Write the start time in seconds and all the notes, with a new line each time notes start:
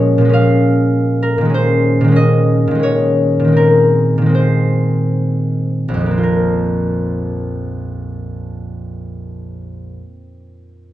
Already playing: A#2 F3 G#3 A#3 C#4 A#4 C#5 D#5 F5
0.18 A#2 F3
0.25 G#3
0.29 C#4 F5
1.23 A#4
1.38 A#2 D#3
1.45 G#3
1.50 C#4
1.54 C5
2.01 A#2 D#3
2.08 G#3 C#4
2.16 D#5
2.67 A#2 D#3
2.75 G#3
2.79 C#4 C#5
3.40 A#2
3.44 D#3 G#3
3.52 C4
3.57 A#4
4.18 A#2 D#3
4.26 G#3 C4
4.35 C5
5.88 A#1
5.94 F2
6.00 F3
6.06 A#3
6.11 C4
6.18 F4
6.23 A#4